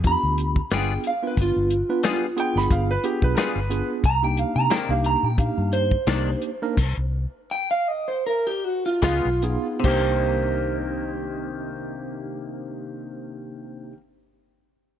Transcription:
0.00 0.15 F2 medium
0.00 closed hi-hat medium
0.04 0.58 B3 medium
0.04 0.58 D4 medium
0.04 0.58 F4 medium
0.04 0.59 G4 medium
0.04 0.70 B5 medium
0.04 kick loud
0.23 0.59 D2 medium
0.38 closed hi-hat medium
0.56 kick medium
0.70 0.96 G1 medium
0.70 0.92 G3 medium
0.70 1.11 B3 medium
0.70 0.93 B3 medium
0.70 1.11 D4 medium
0.70 1.11 F4 medium
0.70 0.93 F4 medium
0.70 1.11 G#4 medium
0.70 0.93 G#4 medium
0.70 1.04 G5 medium
0.70 snare loud
0.70 closed hi-hat medium
1.04 1.23 F5 medium
1.04 closed hi-hat medium
1.23 1.73 B3 medium
1.23 1.73 D4 medium
1.23 1.73 F4 medium
1.23 1.74 B4 medium
1.27 1.39 B4 medium
1.37 1.51 G1 loud
1.37 kick loud
1.37 closed hi-hat medium
1.42 3.35 F4 loud
1.56 1.81 G1 medium
1.70 closed hi-hat medium
1.89 2.28 B3 medium
1.89 2.28 D4 medium
1.89 2.28 F4 medium
1.89 2.28 B4 medium
2.04 2.25 G3 medium
2.04 2.25 B3 medium
2.04 2.26 F4 medium
2.04 2.26 G#4 medium
2.04 snare loud
2.04 closed hi-hat medium
2.36 2.91 B3 medium
2.36 2.91 D4 medium
2.36 2.91 F4 medium
2.36 2.91 G#4 loud
2.36 2.56 G5 medium
2.36 closed hi-hat medium
2.56 2.67 G1 medium
2.56 2.70 B5 medium
2.56 snare soft
2.71 2.96 G1 loud
2.71 2.88 F5 medium
2.71 kick loud
2.71 closed hi-hat medium
2.91 3.04 B4 medium
3.04 3.58 B3 medium
3.04 3.58 D4 medium
3.04 3.58 F4 medium
3.04 3.21 G4 medium
3.04 3.58 G#4 medium
3.04 closed hi-hat medium
3.22 3.34 B1 medium
3.22 3.37 B4 medium
3.22 kick medium
3.35 3.59 G3 medium
3.35 3.59 B3 medium
3.35 3.59 F4 medium
3.35 3.59 G#4 medium
3.35 3.39 A#4 medium
3.35 snare medium
3.35 closed hi-hat medium
3.39 3.88 B4 medium
3.56 3.81 G1 medium
3.70 4.03 B3 medium
3.70 4.04 D4 medium
3.70 4.04 F4 medium
3.70 4.04 G#4 medium
3.70 closed hi-hat medium
4.04 4.43 C2 medium
4.04 4.22 A#5 loud
4.04 kick loud
4.04 closed hi-hat medium
4.23 4.73 A#3 medium
4.23 4.74 D4 medium
4.23 4.73 D#4 medium
4.23 4.74 G4 medium
4.23 4.39 G5 medium
4.37 4.56 F5 medium
4.37 closed hi-hat medium
4.56 4.67 C3 medium
4.56 4.70 A#5 medium
4.70 4.92 C3 medium
4.70 4.92 D#3 medium
4.70 4.92 A#3 medium
4.70 4.93 D4 medium
4.70 4.90 G5 medium
4.70 snare loud
4.70 closed hi-hat medium
4.89 5.15 C2 medium
4.89 5.29 A#3 medium
4.89 5.29 D4 medium
4.89 5.29 D#4 medium
4.89 5.29 G4 medium
4.89 5.04 F5 medium
5.04 5.24 A#5 loud
5.04 closed hi-hat medium
5.23 5.49 A#2 medium
5.23 5.39 G5 medium
5.38 5.93 A#3 medium
5.38 5.94 D4 medium
5.38 5.94 D#4 medium
5.38 5.94 G4 medium
5.38 5.72 F5 medium
5.38 kick loud
5.38 closed hi-hat medium
5.58 5.95 G2 medium
5.73 7.10 C5 medium
5.73 closed hi-hat medium
5.91 kick medium
6.07 6.33 C2 medium
6.07 6.29 C3 medium
6.07 6.30 D#3 medium
6.07 6.49 A#3 medium
6.07 6.30 A#3 medium
6.07 6.49 D4 medium
6.07 6.30 D4 medium
6.07 6.49 D#4 medium
6.07 6.49 G4 medium
6.07 snare loud
6.07 closed hi-hat medium
6.42 closed hi-hat medium
6.62 6.78 A#3 medium
6.62 6.78 D4 medium
6.62 6.78 D#4 medium
6.62 6.78 A#4 loud
6.77 6.93 C2 loud
6.77 kick loud
6.77 closed hi-hat medium
6.77 crash medium
6.97 7.25 C2 medium
7.51 7.70 G5 medium
7.71 7.88 F5 medium
7.88 8.08 D#5 medium
8.08 8.24 C5 medium
8.27 8.46 A#4 medium
8.47 8.64 G4 medium
8.64 8.85 F#4 medium
8.86 9.01 F4 medium
9.02 9.19 C#2 loud
9.02 9.28 C#3 medium
9.02 9.28 G#3 medium
9.02 9.29 B3 medium
9.02 9.41 F4 loud
9.02 9.64 F4 medium
9.02 9.29 F4 medium
9.02 kick medium
9.02 snare medium
9.02 closed hi-hat medium
9.25 9.56 B1 medium
9.42 9.84 B3 medium
9.42 9.84 D#4 medium
9.42 9.84 F4 medium
9.42 9.84 G#4 medium
9.42 closed hi-hat medium
9.80 13.92 C3 medium
9.80 13.90 A#3 medium
9.80 13.92 D4 medium
9.84 13.93 C2 medium
9.84 13.97 D#3 medium
9.84 13.93 D#4 medium
9.84 13.93 G4 medium
9.84 13.94 G4 medium
9.84 13.93 C5 medium
9.84 kick medium
9.84 crash medium
9.88 14.00 A#3 medium

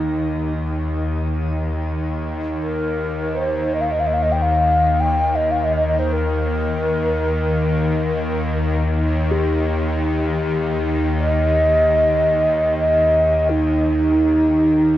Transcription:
0.00 1.28 D#2 medium
0.00 1.28 D#3 medium
0.00 0.52 D#4 medium
0.00 1.73 G4 soft
1.29 14.98 D#2 medium
1.29 14.98 D#3 medium
2.61 3.37 A#4 medium
3.35 3.75 C5 medium
3.74 3.82 D#5 medium
3.81 3.93 F5 medium
3.91 4.01 D#5 medium
4.00 4.08 F5 medium
4.07 4.15 D#5 medium
4.13 4.24 F5 medium
4.23 4.33 D#5 medium
4.32 4.43 G5 medium
4.42 5.02 F5 medium
5.00 5.37 G5 medium
5.35 5.52 D#5 medium
5.51 5.65 F5 medium
5.64 5.75 D#5 medium
5.76 5.86 D#5 medium
5.88 6.00 D#5 medium
5.99 6.14 C5 medium
6.13 8.76 A#4 medium
9.31 14.98 G4 medium
11.18 12.75 D#5 loud
12.79 13.51 D#5 medium
13.50 14.98 D#4 medium

